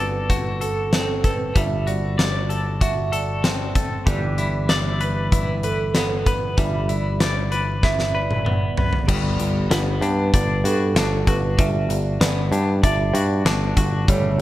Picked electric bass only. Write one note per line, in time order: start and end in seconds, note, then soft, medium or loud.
0.00 1.51 G1 medium
1.56 4.03 G1 medium
4.07 6.54 G1 medium
6.58 9.05 G1 medium
9.08 9.37 G1 medium
9.40 9.68 G1 medium
9.70 9.99 G1 medium
10.01 10.31 G2 medium
10.34 10.62 G1 medium
10.64 10.93 G2 medium
10.95 11.24 G1 medium
11.27 11.56 G1 medium
11.59 11.87 G1 medium
11.89 12.18 G1 medium
12.21 12.49 G1 medium
12.52 12.81 G2 medium
12.83 13.12 G1 medium
13.14 13.43 G2 medium
13.45 13.74 G1 medium
13.77 14.05 G1 medium
14.08 14.37 G1 medium
14.38 14.41 G1 medium